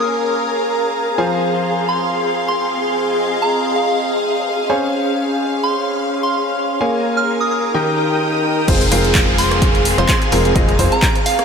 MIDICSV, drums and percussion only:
0, 0, Header, 1, 2, 480
1, 0, Start_track
1, 0, Key_signature, -4, "minor"
1, 0, Tempo, 468750
1, 1210, Time_signature, 4, 2, 24, 8
1, 11723, End_track
2, 0, Start_track
2, 0, Title_t, "Drums"
2, 8890, Note_on_c, 9, 36, 114
2, 8890, Note_on_c, 9, 42, 84
2, 8890, Note_on_c, 9, 49, 103
2, 8992, Note_off_c, 9, 36, 0
2, 8992, Note_off_c, 9, 42, 0
2, 8992, Note_off_c, 9, 49, 0
2, 9023, Note_on_c, 9, 46, 60
2, 9125, Note_off_c, 9, 46, 0
2, 9130, Note_on_c, 9, 46, 108
2, 9232, Note_off_c, 9, 46, 0
2, 9263, Note_on_c, 9, 42, 52
2, 9365, Note_off_c, 9, 42, 0
2, 9368, Note_on_c, 9, 39, 118
2, 9370, Note_on_c, 9, 36, 125
2, 9370, Note_on_c, 9, 42, 80
2, 9470, Note_off_c, 9, 39, 0
2, 9472, Note_off_c, 9, 36, 0
2, 9472, Note_off_c, 9, 42, 0
2, 9610, Note_on_c, 9, 46, 106
2, 9712, Note_off_c, 9, 46, 0
2, 9743, Note_on_c, 9, 37, 84
2, 9743, Note_on_c, 9, 42, 56
2, 9845, Note_off_c, 9, 37, 0
2, 9845, Note_off_c, 9, 42, 0
2, 9850, Note_on_c, 9, 36, 119
2, 9850, Note_on_c, 9, 42, 84
2, 9952, Note_off_c, 9, 36, 0
2, 9952, Note_off_c, 9, 42, 0
2, 9983, Note_on_c, 9, 42, 38
2, 10085, Note_off_c, 9, 42, 0
2, 10090, Note_on_c, 9, 46, 103
2, 10192, Note_off_c, 9, 46, 0
2, 10222, Note_on_c, 9, 42, 55
2, 10325, Note_off_c, 9, 42, 0
2, 10328, Note_on_c, 9, 39, 127
2, 10330, Note_on_c, 9, 36, 121
2, 10330, Note_on_c, 9, 42, 85
2, 10430, Note_off_c, 9, 39, 0
2, 10432, Note_off_c, 9, 36, 0
2, 10432, Note_off_c, 9, 42, 0
2, 10463, Note_on_c, 9, 42, 37
2, 10565, Note_off_c, 9, 42, 0
2, 10570, Note_on_c, 9, 46, 107
2, 10672, Note_off_c, 9, 46, 0
2, 10703, Note_on_c, 9, 42, 54
2, 10805, Note_off_c, 9, 42, 0
2, 10810, Note_on_c, 9, 36, 121
2, 10810, Note_on_c, 9, 42, 82
2, 10912, Note_off_c, 9, 36, 0
2, 10912, Note_off_c, 9, 42, 0
2, 10942, Note_on_c, 9, 42, 36
2, 11045, Note_off_c, 9, 42, 0
2, 11049, Note_on_c, 9, 46, 112
2, 11050, Note_on_c, 9, 36, 61
2, 11152, Note_off_c, 9, 36, 0
2, 11152, Note_off_c, 9, 46, 0
2, 11183, Note_on_c, 9, 42, 52
2, 11285, Note_off_c, 9, 42, 0
2, 11288, Note_on_c, 9, 39, 124
2, 11290, Note_on_c, 9, 36, 124
2, 11290, Note_on_c, 9, 42, 79
2, 11390, Note_off_c, 9, 39, 0
2, 11392, Note_off_c, 9, 36, 0
2, 11392, Note_off_c, 9, 42, 0
2, 11423, Note_on_c, 9, 42, 37
2, 11525, Note_off_c, 9, 42, 0
2, 11530, Note_on_c, 9, 46, 111
2, 11632, Note_off_c, 9, 46, 0
2, 11663, Note_on_c, 9, 37, 83
2, 11663, Note_on_c, 9, 42, 56
2, 11723, Note_off_c, 9, 37, 0
2, 11723, Note_off_c, 9, 42, 0
2, 11723, End_track
0, 0, End_of_file